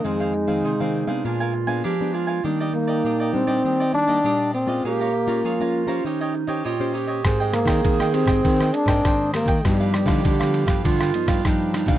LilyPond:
<<
  \new Staff \with { instrumentName = "Cavaquinho" } { \time 4/4 \key ees \major \tempo 4 = 100 <ees' aes' c'' f''>16 <aes' c'' f''>16 r16 <aes' c'' f''>16 <ees' aes' c'' f''>16 <aes' c'' f''>8 <aes' c'' f''>16 <d' bes' f'' aes''>16 <bes' f'' aes''>16 r16 <bes' f'' aes''>16 <d' bes' f'' aes''>8 <d' bes' f'' aes''>16 <bes' f'' aes''>16 | <d' g' d'' ees''>16 <g' d'' ees''>16 r16 <g' d'' ees''>16 <d' g' d'' ees''>16 <g' d'' ees''>8 <g' d'' ees''>16 <d' g' d'' ees''>16 <g' d'' ees''>16 r16 <g' d'' ees''>16 <d' g' d'' ees''>8 <d' g' d'' ees''>16 <g' d'' ees''>16 | <aes' des'' f'' bes''>16 <des'' f'' bes''>16 r16 <des'' f'' bes''>16 <aes' des'' f'' bes''>16 <des'' f'' bes''>8 <des'' f'' bes''>16 <ees' g' des'' ees''>16 <g' des'' ees''>16 r16 <g' des'' ees''>16 <ees' g' des'' ees''>8 <ees' g' des'' ees''>16 <g' des'' ees''>16 | <aes' c'' ees'' g''>16 <c'' ees'' g''>16 r16 <c'' ees'' g''>16 <aes' c'' ees'' g''>16 <c'' ees'' g''>8 <c'' ees'' g''>16 <aes' c'' ees'' g''>16 <c'' ees'' g''>16 r16 <c'' ees'' g''>16 <aes' c'' ees'' g''>8 <aes' c'' ees'' g''>16 <c'' ees'' g''>16 |
<d' g' b' f''>16 <g' b' f''>16 r16 <g' b' f''>16 <d' g' b' f''>16 <g' b' f''>8 <g' b' f''>16 <d' g' b' f''>16 <g' b' f''>16 r16 <g' b' f''>16 <d' g' b' f''>8 <d' g' b' f''>16 <g' b' f''>16 | }
  \new Staff \with { instrumentName = "Clarinet" } { \time 4/4 \key ees \major ees'2 f'4 g'8 f'8 | ees'2.~ ees'8 r8 | g'4 f'4 ees'4 f'8 g'8 | aes'2.~ aes'8 r8 |
g'2 f'4 ees'8 ees'8 | }
  \new Staff \with { instrumentName = "Nylon-string guitar" } { \time 4/4 \key ees \major << { <ees aes c'>8 r16 <ees aes c'>8 <ees aes c'>8 <aes b d'>4 <aes ces' d'>8 <aes ces' d'>8. | <g bes d'>8 <g bes>8. r16 <g bes d'>16 <g bes d'>16 <g bes d'>16 r16 <g bes d'>16 <g bes d'>16 <g bes d'>8 r16 <aes des' f'>16~ | <aes des' f'>8 r16 <aes des' f'>8 <aes des' f'>8 <des' g' c''>4 <des' g' c''>8 <des' g' c''>8. | <c' g' bes'>8 r16 <c' bes'>8. <c' g' bes'>8 <c' bes'>8. <c' bes'>8. <c' g' bes'>16 r16 |
<f b ees'>8. <f b ees'>8 <f b>4 r16 <f b ees'>8 <f b ees'>8. <ees bes d'>16 | } \\ { f,4 c4 bes,4 f4 | ees4 bes,4 ees4 bes,4 | bes,4 f4 ees4 bes,4 | aes4 ees4 aes4 ees4 |
g,4 r4 g,4 r4 | } >> }
  \new Staff \with { instrumentName = "Trombone" } { \time 4/4 \key ees \major aes2 r2 | r8 bes4 c'4 d'4 c'8 | bes2 r2 | r8 bes4 c'4 d'4 bes8 |
g2 r2 | }
  \new Staff \with { instrumentName = "Nylon-string guitar" } { \clef bass \time 4/4 \key ees \major r1 | r1 | r1 | aes,8. ees16 ees8. aes,16 ees8 r16 aes,16 aes,8. ees16 |
g,8. d16 d8. g,16 d8 r16 g,16 g,8. b,16 | }
  \new DrumStaff \with { instrumentName = "Drums" } \drummode { \time 4/4 r4 r4 r4 r4 | r4 r4 r4 r4 | r4 r4 r4 r4 | <bd cymr ss>8 <cymr ss>16 <bd cymr ss>16 <bd cymr>16 ss16 cymr16 <bd cymr ss>16 <bd cymr>16 ss16 cymr16 <bd cymr ss>16 <bd cymr ss>8 <cymr ss>16 <bd cymr>16 |
<bd cymr ss>8 <cymr ss>16 <bd cymr ss>16 <bd cymr>16 ss16 cymr16 <bd cymr ss>16 <bd cymr>16 ss16 cymr16 <bd cymr ss>16 <bd cymr ss>8 <cymr ss>16 <bd cymr>16 | }
>>